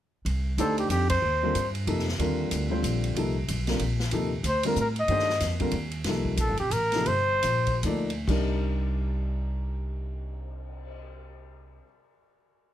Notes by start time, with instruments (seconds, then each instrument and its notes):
0.25 upright bass C2, ride
0.58 upright bass D2, grand piano A3 D4 D#4 G4 C5, trumpet A4, hi-hat pedal, ride
0.78 trumpet G4, ride
0.89 upright bass F2, trumpet G4, hi-hat pedal, ride
1.09 trumpet C5, kick, ride
1.22 upright bass D#2
1.43 grand piano D3 G3 C4 F4 A#4
1.55 upright bass G2, hi-hat pedal, ride
1.75 ride
1.87 upright bass F2, grand piano C3 F3 A#3 D#4 A4, ride
1.99 snare
2.09 snare
2.19 upright bass D#2, grand piano D3 G3 C4 F4 A#4, ride
2.51 upright bass D2, hi-hat pedal, ride
2.70 grand piano D3 G3 C4 F4 C5
2.83 upright bass A#1, hi-hat pedal, ride
3.04 ride
3.15 upright bass C2, grand piano C3 F3 A#3 D#4 A4, ride
3.48 upright bass B1, hi-hat pedal, ride
3.67 grand piano D3 G3 C4 F4 A#4, snare, ride
3.79 upright bass A#1, ride
4.00 snare
4.11 upright bass D#2, grand piano C3 F3 A#3 D#4 A4, ride
4.43 upright bass D2, hi-hat pedal, ride
4.48 trumpet C5
4.63 grand piano D3 G3 C4 F4 A#4, trumpet A#4, ride
4.76 upright bass A2, hi-hat pedal
4.80 trumpet A#4
4.96 ride
5.00 trumpet D#5
5.08 upright bass G2, grand piano D#3 A3 D4 G4 C5, ride
5.19 snare
5.30 snare
5.40 upright bass F2, snare, hi-hat pedal, ride
5.60 grand piano D3 G3 C4 F4 A#4, kick, ride
5.71 upright bass D#2, ride
5.91 ride
6.04 upright bass C2, grand piano C3 F3 A#3 D#4, snare, ride
6.08 grand piano A4
6.25 kick
6.37 upright bass A#1, trumpet A4, hi-hat pedal, ride
6.48 upright bass G1
6.57 upright bass D#1, trumpet G4, ride
6.70 upright bass A1, trumpet A#4, hi-hat pedal, ride
6.92 grand piano C3 F3 A#3 D#4 A4, snare, ride
7.06 upright bass G1, trumpet C5, ride
7.42 upright bass A#1, hi-hat pedal, ride
7.67 kick, ride
7.83 upright bass D2, grand piano F3 A#3 D#4 A4 D5, hi-hat pedal, ride
8.10 ride
8.27 upright bass C2, grand piano C3 G3 D4 D#4 A#4, kick, crash
8.57 cymbal swell